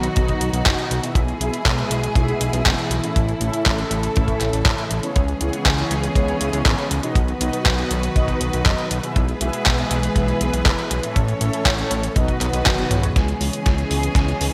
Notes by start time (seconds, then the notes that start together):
Already playing: B2 D#3 F#3 D#4 F#4
0.03 closed hi-hat
0.16 B1 B2 B3 D#4 F#4 D#5, kick, closed hi-hat
0.28 kick, closed hi-hat
0.41 B1, closed hi-hat
0.53 B1, closed hi-hat
0.66 F#1 B2 B3 D#4 F#4 D#5, kick, clap, closed hi-hat
0.79 closed hi-hat
0.91 B1, closed hi-hat
1.03 B2 B3 E4 G#4 E5, closed hi-hat
1.15 B1 E3 G#3 E4 G#4, kick, closed hi-hat
1.28 closed hi-hat
1.41 B1 B2 B3 E4 G#4 E5, closed hi-hat
1.54 closed hi-hat
1.65 B1, kick, clap, closed hi-hat
1.78 B2 B3 E4 G#4 E5, closed hi-hat
1.91 B1, closed hi-hat
2.03 closed hi-hat
2.15 B1 B2 B3 E4 G#4 E5, kick, closed hi-hat
2.28 closed hi-hat
2.41 B1, closed hi-hat
2.53 B1, closed hi-hat
2.66 F#1 B2 B3 E4 G#4 E5, kick, clap, closed hi-hat
2.79 closed hi-hat
2.90 B1, closed hi-hat
3.03 A2 C#4 E4 A4 E5, closed hi-hat
3.16 A1 C#3 A3 A4, kick, closed hi-hat
3.29 closed hi-hat
3.41 A1 A2 C#4 E4 A4 E5, closed hi-hat
3.53 closed hi-hat
3.66 A1, kick, clap, closed hi-hat
3.78 A2 C#4 E4 A4 E5, closed hi-hat
3.91 A1, closed hi-hat
4.03 closed hi-hat
4.16 A1 A2 C#4 E4 A4 E5, kick, closed hi-hat
4.28 kick, closed hi-hat
4.41 A1, clap, closed hi-hat
4.53 A1, closed hi-hat
4.65 A2 C#4 E4 A4 E5, kick, clap, closed hi-hat
4.78 closed hi-hat
4.91 A1, closed hi-hat
5.03 C#3 B3 E4 G#4 C#5, closed hi-hat
5.16 C#2 E3 G#3 B3 C#4 G#4, kick, closed hi-hat
5.28 closed hi-hat
5.41 C#2 C#3 B3 E4 G#4 C#5, closed hi-hat
5.53 closed hi-hat
5.66 C#2, kick, clap, closed hi-hat
5.78 C#3 B3 E4 G#4 C#5, closed hi-hat
5.91 C#2, closed hi-hat
6.03 closed hi-hat
6.15 C#2 C#3 B3 E4 G#4 C#5, kick, closed hi-hat
6.28 closed hi-hat
6.41 C#2, closed hi-hat
6.53 C#2, closed hi-hat
6.66 G#1 C#3 B3 E4 G#4 C#5, kick, clap, closed hi-hat
6.78 closed hi-hat
6.91 C#2, closed hi-hat
7.03 B2 B3 D#4 F#4 D#5, closed hi-hat
7.15 B1 D#3 F#3 F#4 B4, kick, closed hi-hat
7.28 closed hi-hat
7.41 B1 B2 B3 D#4 F#4 D#5, closed hi-hat
7.53 closed hi-hat
7.66 B1, kick, clap, closed hi-hat
7.78 B2 B3 D#4 F#4 D#5, closed hi-hat
7.91 B1, closed hi-hat
8.03 closed hi-hat
8.16 B1 B2 B3 D#4 F#4 D#5, kick, closed hi-hat
8.28 kick, closed hi-hat
8.41 B1, closed hi-hat
8.53 B1, closed hi-hat
8.66 F#1 B2 B3 D#4 F#4 D#5, kick, clap, closed hi-hat
8.78 closed hi-hat
8.91 B1, closed hi-hat
9.03 B2 B3 E4 G#4 E5, closed hi-hat
9.16 B1 E3 G#3 B3 G#4 B4, kick, closed hi-hat
9.29 closed hi-hat
9.41 B1 B2 B3 E4 G#4 E5, closed hi-hat
9.53 closed hi-hat
9.66 B1, kick, clap, closed hi-hat
9.78 B2 B3 E4 G#4 E5, closed hi-hat
9.91 B1, closed hi-hat
10.03 closed hi-hat
10.16 B1 B2 B3 E4 G#4 E5, kick, closed hi-hat
10.28 closed hi-hat
10.41 B1, closed hi-hat
10.53 B1, closed hi-hat
10.65 F#1 B2 B3 E4 G#4 E5, kick, clap, closed hi-hat
10.79 closed hi-hat
10.91 B1, closed hi-hat
11.03 A2 C#4 E4 A4 E5, closed hi-hat
11.16 A1 A3 C#4 A4 C#5, kick, closed hi-hat
11.28 closed hi-hat
11.41 A1 A2 C#4 E4 A4 E5, closed hi-hat
11.53 closed hi-hat
11.65 A1, kick, clap, closed hi-hat
11.78 A2 C#4 E4 A4 E5, closed hi-hat
11.91 A1, closed hi-hat
12.03 closed hi-hat
12.16 B1 B2 D#3 F#3 B3 D#4 F#4 B4 D#5, kick, closed hi-hat
12.28 kick, closed hi-hat
12.41 B1 B2 B3 D#4 F#4 D#5, clap, closed hi-hat
12.53 B1, closed hi-hat
12.66 F#1, kick, clap, closed hi-hat, high tom
12.78 B2 B3 D#4 F#4 F#5, closed hi-hat, high tom
12.91 B1 C#3 B3 E4 G#4 C#5, closed hi-hat, mid tom
13.03 closed hi-hat, mid tom
13.16 C#2 E3 G#3 B3 C#4 G#4, kick, snare, closed hi-hat
13.28 closed hi-hat
13.41 C#2 C#3 B3 E4 G#4 C#5, open hi-hat
13.53 closed hi-hat
13.66 C#2, kick, snare, closed hi-hat
13.78 C#3 B3 E4 G#4 C#5, closed hi-hat
13.91 C#2, open hi-hat
14.03 closed hi-hat
14.15 C#2 C#3 B3 E4 G#4 C#5, kick, snare, closed hi-hat
14.28 closed hi-hat
14.41 C#2, open hi-hat